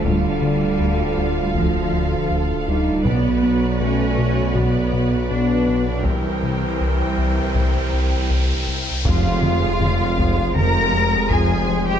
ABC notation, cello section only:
X:1
M:4/4
L:1/16
Q:1/4=80
K:Cm
V:1 name="Cello section"
G,8 F,4 z2 G,2 | =B,4 _D4 B,4 =D3 D | G,12- G,2 z2 | [K:Fm] F8 B4 A3 G |]